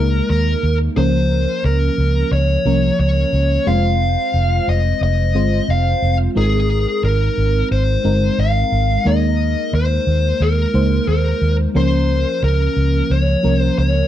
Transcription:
0.00 0.20 C#2 medium
0.00 0.98 G#3 medium
0.00 0.97 A#3 medium
0.00 0.98 D#4 medium
0.00 0.29 A#4 medium
0.00 0.97 A#4 medium
0.30 0.54 D#2 medium
0.30 0.77 A#4 medium
0.63 0.87 D#2 medium
0.96 1.45 C#2 loud
0.96 1.82 F3 medium
0.96 1.82 A#3 medium
0.96 1.82 C#4 medium
0.96 1.83 A#4 medium
0.96 1.65 C5 medium
1.64 1.89 C#2 medium
1.64 2.32 A#4 medium
1.98 2.22 C#2 medium
2.31 2.56 C#2 loud
2.31 2.99 C#5 medium
2.65 2.90 C2 medium
2.65 3.29 F3 medium
2.65 3.30 A#3 medium
2.65 3.30 C#4 medium
2.65 3.30 A#4 medium
2.99 3.23 C#2 medium
2.99 3.69 C#5 medium
3.33 3.57 C#2 medium
3.66 4.15 F1 loud
3.66 4.52 G#3 medium
3.66 4.52 C4 medium
3.66 4.52 F4 medium
3.66 4.52 C5 medium
3.66 4.71 F5 loud
4.34 4.58 F1 medium
4.68 4.92 F1 medium
4.68 5.00 D#5 medium
5.01 5.35 F1 loud
5.01 5.71 D#5 loud
5.35 5.59 G1 medium
5.35 5.99 G#3 medium
5.35 5.99 C4 medium
5.35 5.99 F4 medium
5.35 5.99 C5 medium
5.68 5.93 F1 medium
5.68 6.17 F5 medium
6.02 6.27 F1 medium
6.35 6.85 G#1 loud
6.35 7.21 G#3 medium
6.35 7.21 C4 medium
6.35 7.22 D#4 medium
6.35 7.04 G#4 medium
6.35 7.22 A#4 medium
7.03 7.28 G#1 medium
7.03 7.67 A#4 medium
7.38 7.62 G#1 medium
7.71 7.95 G#1 loud
7.71 8.41 C5 medium
8.04 8.29 G1 medium
8.04 8.68 G#3 medium
8.04 8.69 C4 medium
8.04 8.69 D#4 medium
8.04 8.69 A#4 medium
8.38 8.63 G#1 medium
8.38 9.08 F5 medium
8.72 8.96 G#1 medium
9.05 9.54 D#2 medium
9.05 9.91 G#3 medium
9.05 9.91 A#3 medium
9.05 9.91 D#4 medium
9.05 9.91 A#4 medium
9.05 9.74 D#5 medium
9.73 9.97 D#2 medium
9.73 10.43 C5 medium
10.07 10.31 D#2 medium
10.40 10.65 D#2 loud
10.40 11.07 A#4 medium
10.74 10.98 C#2 medium
10.74 11.38 G#3 medium
10.74 11.38 A#3 medium
10.74 11.38 D#4 medium
10.74 11.39 C5 medium
11.08 11.32 D#2 medium
11.08 11.55 A#4 medium
11.41 11.66 D#2 medium
11.74 12.24 C#2 medium
11.74 12.60 F3 medium
11.74 12.61 A#3 medium
11.74 12.61 C#4 medium
11.74 12.61 A#4 medium
11.74 12.44 C5 medium
12.43 12.67 C#2 medium
12.43 13.13 A#4 medium
12.76 13.01 C#2 medium
13.10 13.34 C#2 loud
13.10 13.59 C#5 medium
13.43 13.68 C2 medium
13.43 14.08 F3 medium
13.43 14.08 A#3 medium
13.43 14.08 C#4 medium
13.43 14.08 A#4 medium
13.59 13.77 C5 medium
13.78 14.02 C#2 medium
13.78 14.08 C#5 medium

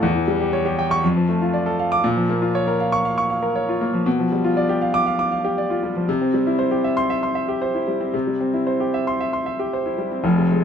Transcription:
0.02 1.00 E2 medium
0.15 0.36 E3 medium
0.28 0.48 G3 medium
0.41 0.61 G4 medium
0.53 0.73 C#5 medium
0.66 0.86 G4 medium
0.79 0.99 G5 medium
0.91 1.04 C#6 medium
1.03 2.01 F2 medium
1.16 1.36 F3 medium
1.29 1.49 A3 medium
1.42 1.62 F4 medium
1.54 1.74 D5 medium
1.66 1.87 A4 medium
1.79 2.00 F5 medium
1.92 2.04 D6 medium
2.04 4.01 A#2 medium
2.16 2.37 F3 medium
2.29 2.50 A#3 medium
2.42 2.62 F4 medium
2.55 2.75 C#5 medium
2.67 2.88 A#4 medium
2.80 3.00 F5 medium
2.92 3.13 C#6 medium
3.05 3.25 F5 medium
3.18 3.38 C#6 medium
3.30 3.50 F5 medium
3.43 3.63 A#4 medium
3.56 3.75 C#5 medium
3.69 3.88 F4 medium
3.81 4.01 A#3 medium
3.93 4.06 F3 medium
4.06 6.04 B2 medium
4.19 4.39 F3 medium
4.32 4.52 G3 medium
4.44 4.64 F4 medium
4.57 4.76 D5 medium
4.69 4.89 G4 medium
4.82 5.01 F5 medium
4.94 5.14 D6 medium
5.06 5.26 F5 medium
5.19 5.39 D6 medium
5.32 5.52 F5 medium
5.44 5.65 G4 medium
5.58 5.78 D5 medium
5.70 5.90 F4 medium
5.83 6.03 G3 medium
5.96 6.08 F3 medium
6.09 8.10 C3 medium
6.21 6.41 C4 medium
6.34 6.54 G3 medium
6.47 6.66 E4 medium
6.59 6.79 C5 medium
6.71 6.91 G4 medium
6.84 7.04 E5 medium
6.97 7.17 C6 medium
7.10 7.30 E5 medium
7.23 7.43 C6 medium
7.35 7.56 E5 medium
7.48 7.69 G4 medium
7.62 7.82 C5 medium
7.74 7.95 E4 medium
7.88 8.08 G3 soft
8.01 8.22 C4 medium
8.14 10.21 C3 medium
8.27 8.48 G3 medium
8.41 8.62 C4 medium
8.54 8.75 E4 medium
8.67 8.88 C5 medium
8.80 9.01 G4 medium
8.94 9.15 E5 medium
9.07 9.28 C6 medium
9.20 9.41 E5 medium
9.33 9.54 C6 medium
9.46 9.67 E5 soft
9.59 9.80 G4 medium
9.73 9.94 C5 medium
9.86 10.07 E4 medium
9.98 10.19 G3 medium
10.12 10.25 C4 medium
10.24 10.64 F1 medium
10.24 10.64 F2 medium
10.38 10.59 C3 medium
10.51 10.64 G#3 medium

